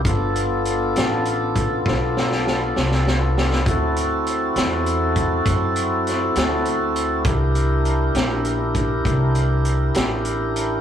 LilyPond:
<<
  \new Staff \with { instrumentName = "Tonewheel organ" } { \time 12/8 \key d \dorian \tempo 4. = 67 <b d' f' a'>1. | <c' e' fis' a'>1. | <d' e' g' bes'>1. | }
  \new Staff \with { instrumentName = "Upright bass" } { \clef bass \time 12/8 \key d \dorian g,,4. a,,4. b,,4. c,4. | d,4. e,4. fis,4. d,4. | c,4. bes,,4. c,4. a,,4. | }
  \new DrumStaff \with { instrumentName = "Drums" } \drummode { \time 12/8 <hh bd>8 hh8 hh8 <hh sn>8 hh8 <hh bd>8 <bd sn>8 sn16 sn16 sn8 sn16 sn16 sn8 sn16 sn16 | <hh bd>8 hh8 hh8 <hh sn>8 hh8 <hh bd>8 <hh bd>8 hh8 <hh sn>8 <hh sn>8 hh8 hh8 | <hh bd>8 hh8 hh8 <hh sn>8 hh8 <hh bd>8 <hh bd>8 hh8 hh8 <hh sn>8 hh8 hh8 | }
>>